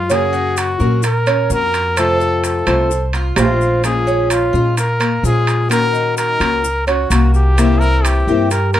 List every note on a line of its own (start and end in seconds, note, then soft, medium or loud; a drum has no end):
0.00 0.74 F#2 medium
0.00 0.10 F4 medium
0.00 0.14 F4 medium
0.10 0.79 C#3 medium
0.10 0.79 F#3 medium
0.10 0.80 A#3 medium
0.10 0.33 C#4 medium
0.10 0.79 C#4 medium
0.10 0.78 F#4 medium
0.10 0.59 G#4 loud
0.10 high timbale medium
0.10 maracas medium
0.33 0.79 F#4 medium
0.33 maracas soft
0.57 1.04 F#4 medium
0.57 high timbale medium
0.57 maracas medium
0.79 1.46 A#2 medium
0.79 1.03 F#3 medium
0.79 1.03 A#3 medium
0.79 1.03 C#4 medium
0.79 1.02 F#4 medium
0.79 1.25 A#4 medium
0.79 maracas soft
1.03 1.48 A#4 medium
1.03 muted steel-string acoustic guitar stroke medium
1.03 high timbale medium
1.03 maracas medium
1.27 1.50 C#4 medium
1.27 high timbale medium
1.27 maracas soft
1.50 2.61 F2 medium
1.50 1.96 A#3 soft
1.50 1.97 C#4 medium
1.50 1.97 F#4 medium
1.50 1.96 A#4 medium
1.50 2.00 A#4 loud
1.50 maracas medium
1.74 high timbale medium
1.74 maracas soft
1.96 2.66 C3 medium
1.96 2.68 F3 medium
1.96 2.67 A3 medium
1.96 2.66 C4 medium
1.96 2.67 F4 medium
1.96 2.44 A4 loud
1.96 2.20 C5 medium
1.96 high timbale medium
1.96 maracas medium
2.20 2.66 A4 medium
2.20 maracas soft
2.44 3.07 A4 medium
2.44 high timbale medium
2.44 maracas medium
2.66 3.33 C2 medium
2.66 2.89 F3 medium
2.66 2.89 A3 medium
2.66 2.90 C4 medium
2.66 2.90 F4 medium
2.66 3.12 C5 medium
2.66 high timbale medium
2.66 maracas soft
2.90 muted steel-string acoustic guitar stroke medium
2.90 maracas medium
3.13 3.37 F4 medium
3.13 high timbale medium
3.13 maracas soft
3.36 4.47 A#1 medium
3.36 3.82 F3 soft
3.36 3.83 A3 medium
3.36 3.82 C4 medium
3.36 3.84 C4 medium
3.36 3.81 F4 medium
3.36 3.84 F4 medium
3.36 high timbale loud
3.36 low timbale medium
3.36 maracas medium
3.61 maracas soft
3.83 4.53 F3 medium
3.83 4.53 G#3 medium
3.83 4.06 A#3 medium
3.83 4.54 C#4 medium
3.83 4.52 F4 medium
3.83 4.28 G#4 medium
3.83 high timbale medium
3.83 maracas medium
4.07 4.52 C#4 medium
4.07 maracas soft
4.30 4.75 F4 medium
4.30 high timbale medium
4.30 maracas medium
4.53 5.20 A#2 medium
4.53 4.76 G#3 medium
4.53 4.76 C#4 medium
4.53 4.99 F4 medium
4.53 4.76 F4 medium
4.53 maracas soft
4.77 5.21 A#4 medium
4.77 muted steel-string acoustic guitar stroke medium
4.77 high timbale medium
4.77 maracas medium
5.00 5.23 A#3 medium
5.00 high timbale medium
5.00 maracas soft
5.23 6.34 A#2 medium
5.23 5.68 F3 medium
5.23 5.69 G#3 medium
5.23 5.69 C#4 medium
5.23 5.69 F4 medium
5.23 5.70 F4 medium
5.23 5.68 G#4 loud
5.23 maracas medium
5.47 high timbale medium
5.47 maracas soft
5.69 6.39 D#3 medium
5.69 6.41 A#3 medium
5.69 6.39 C#4 medium
5.69 6.39 F#4 medium
5.69 5.93 A#4 medium
5.69 6.14 A#4 loud
5.69 high timbale medium
5.69 maracas medium
5.93 6.39 D#4 medium
5.93 maracas soft
6.17 6.83 A#4 loud
6.17 high timbale medium
6.17 maracas medium
6.40 7.07 C#2 medium
6.40 6.63 A#3 medium
6.40 6.63 C#4 medium
6.40 6.63 F#4 medium
6.40 6.86 A#4 medium
6.40 high timbale medium
6.40 maracas soft
6.64 muted steel-string acoustic guitar stroke medium
6.64 maracas medium
6.87 7.10 C#4 medium
6.87 7.31 F#4 medium
6.87 high timbale medium
6.87 maracas soft
7.10 8.21 C2 medium
7.10 7.57 D#3 medium
7.10 7.56 A#3 medium
7.10 7.57 A#3 medium
7.10 7.57 C#4 medium
7.10 7.58 F#4 medium
7.10 high timbale loud
7.10 maracas medium
7.34 7.81 G4 medium
7.34 maracas soft
7.57 8.27 C3 medium
7.57 8.27 E3 medium
7.57 7.80 A#3 medium
7.57 8.27 A#3 medium
7.57 8.28 C4 medium
7.57 8.27 E4 medium
7.57 high timbale medium
7.57 maracas medium
7.80 8.26 E4 medium
7.80 8.06 A#4 loud
7.80 maracas soft
8.05 8.50 G4 medium
8.05 high timbale medium
8.05 maracas medium
8.27 8.80 G2 medium
8.27 8.50 E3 medium
8.27 8.50 A#3 medium
8.27 8.51 C4 medium
8.27 8.50 E4 medium
8.27 8.73 G4 medium
8.27 maracas soft
8.51 8.73 A#4 medium
8.51 muted steel-string acoustic guitar stroke medium
8.51 high timbale medium
8.51 maracas medium
8.73 8.80 A#3 medium
8.73 8.80 A#4 loud
8.73 high timbale medium
8.73 maracas soft